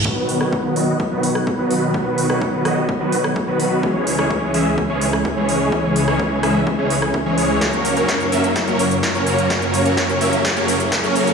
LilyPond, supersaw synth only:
\new Staff \with { instrumentName = "Supersaw synth" } { \time 4/4 \key b \major \tempo 4 = 127 <dis fis b fis' b'>8. <dis fis b fis' b'>8. <dis fis b fis' dis''>16 r8 <dis fis b fis' b'>16 r8. <dis fis b fis' b'>8. | <dis fis b fis' b'>8. <dis fis b fis' b'>8. <dis fis b fis' dis''>16 r8 <dis fis b fis' b'>16 r8. <dis fis b fis' b'>8. | <e gis cis' gis' cis''>8. <e gis cis' gis' cis''>8. <e gis cis' gis' e''>16 r8 <e gis cis' gis' cis''>16 r8. <e gis cis' gis' cis''>8. | <e gis cis' gis' cis''>8. <e gis cis' gis' cis''>8. <e gis cis' gis' e''>16 r8 <e gis cis' gis' cis''>16 r8. <e gis cis' gis' cis''>8. |
<fis ais cis' ais' cis''>8. <fis ais cis' ais' cis''>8. <fis ais cis' ais' e''>16 r8 <fis ais cis' ais' cis''>16 r8. <fis ais cis' ais' cis''>8. | <fis ais cis' ais' cis''>8. <fis ais cis' ais' cis''>8. <fis ais cis' ais' e''>16 r8 <fis ais cis' ais' cis''>16 r8. <fis ais cis' ais' cis''>8. | }